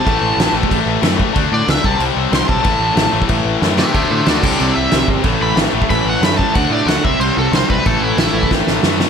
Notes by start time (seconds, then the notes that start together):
Already playing: A5
0.06 A1 A2 E3 A3, kick, crash
0.22 A1
0.37 A1 A2 E3 A3, snare, crash
0.53 A1 A2 E3 A3
0.63 kick
0.70 A1 A2 E3 A3, kick, crash
0.86 A1
1.02 F#2 A2 E3 A3, snare, crash
1.17 A2 E3 A3, kick
1.33 D2 D3 A3 D4, kick, crash
1.52 A2 D5
1.66 C#2 D3 A3 D4, snare, crash
1.70 E5
1.82 C2 C3 G3 C4 A5, kick
1.98 C2 C3 G3 C4, crash
2.16 C2
2.31 C2 C3 G3 C4, snare, crash
2.35 C6
2.46 B1 C3 G3 C4 A5, kick
2.62 A1 A2 E3 A3, kick, crash
2.80 A1
2.94 A1 A2 E3 A3, snare, crash
3.13 A1 A2 E3 A3
3.22 kick
3.28 A1 A2 E3 A3, kick, crash
3.45 A1
3.61 F#2 A2 E3 A3, snare
3.77 A2 E3 A3 G4 E5, snare
3.93 D2 D3 A3 D4 F#4 C5 E5, kick, crash
4.10 A2 C5 E5
4.26 D2 D3 A3 D4 F#4 D5, snare, crash
4.43 C2 C3 E3 G3 C4 E4 A4 D5, kick, crash
4.59 C2 C3 E3 G3 C4 E4 A4 D5, crash
4.76 C2 E5
4.91 C2 C3 E3 G3 C4 E4, snare, crash
5.07 G1 C3 E3 G3 C4 E4, kick
5.24 A1 A2 E3 A3 C#4 E4, kick, crash
5.41 A1 B5
5.55 A1 A2 E3 A3 C#4 E4, snare, crash
5.72 A1 A2 E3 A3 C#4 E4
5.82 kick
5.88 A1 A2 E3 A3 C#4 E4 B5, kick, crash
6.05 A1
6.09 F#5
6.21 F#2 A2 E3 A3 C#4 E4 B5, snare, crash
6.38 A2 E3 A3 C#4 E4 A5, kick
6.55 D2 D3 A3 D4 F#4 F#5, kick, crash
6.70 A2 D5
6.86 D2 D3 A3 D4 F#4 F#5, snare, crash
7.03 C2 C3 E3 G3 C4 E4 E5, kick
7.20 C2 C3 E3 G3 C4 E4 C5, crash
7.37 C2 A4
7.52 C2 C3 E3 G3 C4 E4 C5, snare, crash
7.69 B1 C3 E3 G3 C4 E4 B4, kick
7.86 A1 A2 E3 A3 C#4 E4 A4, kick, crash
8.01 A1 E4
8.17 A1 A2 E3 A3 C#4 E4, snare, crash
8.32 A1 E3 A3 C#4 E4
8.37 A2
8.43 kick
8.51 A1 A2 E3 A3 C#4 E4, kick, snare
8.67 A1, snare
8.83 F#2 A2 E3 A3 C#4 E4, snare
8.99 A2 E3 A3 C#4 E4, snare